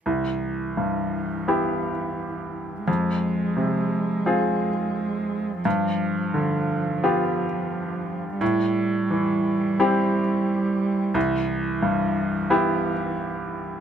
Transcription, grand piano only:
X:1
M:4/4
L:1/8
Q:1/4=87
K:C
V:1 name="Grand piano"
C,,2 G,,2 [B,EG]4 | F,,2 C,2 [CF_A]4 | G,,2 D,2 [B,FG]4 | A,,2 E,2 [CEG]4 |
C,,2 G,,2 [B,EG]4 |]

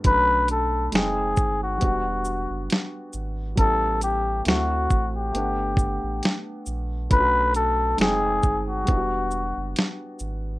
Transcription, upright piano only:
X:1
M:4/4
L:1/8
Q:"Swing 16ths" 1/4=68
K:Edor
V:1 name="Upright piano"
[F,A,CD]2 [_A,=C_Eg]2 [G,B,DF]4 | [G,B,CE]2 [A,=CEF]2 [A,B,Df]4 | [A,CD^EF]2 [_A,=C_Eg]2 [G,B,D=EF]4 |]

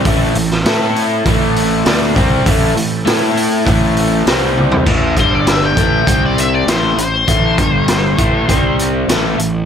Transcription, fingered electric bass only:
X:1
M:4/4
L:1/8
Q:1/4=99
K:Am
V:1 name="Fingered electric bass" clef=bass
A,,, A,,, A,,2 A,,,2 D,, C,, | A,,, A,,, A,,2 A,,,2 C,,2 | A,,, G,,,2 A,,, C,,2 A,,, A,,, | A,,, G,,,2 A,,, C,,2 A,,, A,,, |]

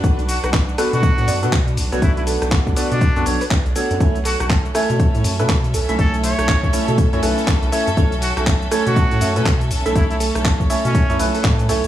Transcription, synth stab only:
X:1
M:4/4
L:1/16
Q:"Swing 16ths" 1/4=121
K:Amix
V:1 name="Synth stab"
[B,DFAB] z4 z [B,DFAB]4- [B,DFAB] [B,DFAB] z3 [B,DFAc] | [B,DFAB]6 [B,DFAB]3 [B,DFAB] [B,DFAc] z3 [B,DFAc]2 | [A,CEAc] z4 z [A,CEAc]4- [A,CEAc] [A,CEAB] z3 [A,CEAe] | [A,CEc]6 [A,CEAc]3 [A,CEAc] [A,CEAB]4 [A,CEAc] z |
[A,CEAc] z4 z [A,CEAc]4- [A,CEAc] [A,CEAB] z3 [A,CEAe] | [A,CEAc]6 [A,CEAc]3 [A,CEAc] [A,CEAB]4 [A,CEAc] z |]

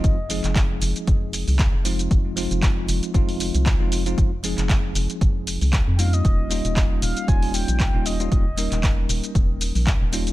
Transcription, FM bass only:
X:1
M:4/4
L:1/16
Q:"Swing 16ths" 1/4=116
K:Fm
V:1 name="FM bass" clef=bass
F,,,3 F,,,3 F,,, z F,,,3 C,,2 F,,,3 | F,,,3 F,,,3 F,,, z F,,,3 C,,2 F,,,3 | F,,,3 F,,,3 F,,, z F,,,3 C,,2 F,,3 | E,,,3 E,,,3 E,,, z E,,,3 B,,,2 E,,,3 |
E,,,3 E,,,3 E,,, z E,,,3 B,,,2 E,,,3 |]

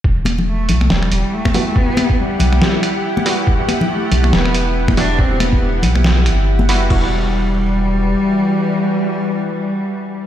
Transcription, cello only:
X:1
M:4/4
L:1/8
Q:"Swing 16ths" 1/4=140
K:Em
V:1 name="Cello"
z2 A,2 G,2 A,2 | B,2 G,4- G, z | z2 A,2 B,2 z D | C B,2 z4 z |
G,8- | G,8 |]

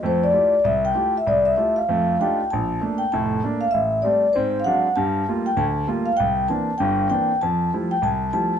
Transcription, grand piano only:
X:1
M:4/4
L:1/8
Q:"Swing" 1/4=195
K:F
V:1 name="Grand piano"
[F,,A,]2 [A,EFG] z C,,2 [A,EFG] z | C,,2 [A,EFG] z [F,,A,]2 [A,D_EFG] z | B,,,2 [A,B,D] z [F,,,A,,]2 [A,B,D] z | A,,,2 [G,A,C] z [_A,,C]2 [_G,_A,CD] z |
[G,,G,]2 [G,A,B,F] z D,,2 [G,A,B,F] z | C,,2 [E,B,CD] z [G,,,G,,]2 [E,B,CD] z | F,,2 [F,G,A,E] z C,,2 [F,G,A,E] z |]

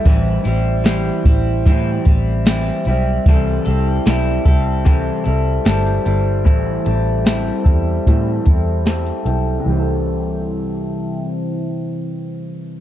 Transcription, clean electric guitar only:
X:1
M:4/4
L:1/8
Q:1/4=75
K:C
V:1 name="Clean electric guitar"
[A,,E,G,CE] [G,CE] [E,G,CE] [G,CE] [A,,E,G,CE] [G,CE] [E,G,CE] [G,CE] | [C,E,G,CEA] [G,CEA] [G,CEA] [G,CEA] [C,E,G,CEA] [G,CEA] [G,CEA] [G,CEA] | [A,,E,G,CEA] [G,CEA] [G,CEA] [G,CEA] [A,,E,G,CEA] [G,CEA] [G,CEA] [G,CEA] | [C,E,G,CEA]8 |]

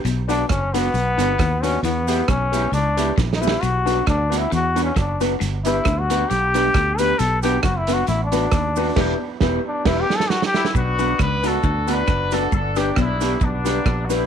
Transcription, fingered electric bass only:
X:1
M:4/4
L:1/8
Q:"Swing" 1/4=135
K:Bm
V:1 name="Fingered electric bass" clef=bass
B,,,2 F,,,2 B,,, G,,, ^D,,2 | E,,2 B,,,2 C,,2 ^A,,,2 | B,,,2 D,,2 E,,2 F,,,2 | G,,,2 D,,2 B,,,2 D,,2 |
B,,,2 F,,,2 A,,,2 ^D,,2 | E,,, z E,,, z E,,, z3 | B,,,2 C,,2 D,,2 F,,,2 | G,,,2 B,,,2 B,,,2 ^A,,,2 |]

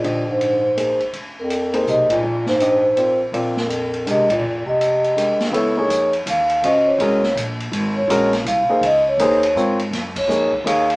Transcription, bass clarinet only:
X:1
M:3/4
L:1/8
Q:"Swing" 1/4=164
K:Bbmix
V:1 name="Bass clarinet" clef=bass
B,, A,,4 z | z F,,3 C, B,,- | B,, A,,4 z | z F,,3 C, B,,- |
B,, C,4 z | [K:Db] z6 | z6 | z6 |
z6 | z6 |]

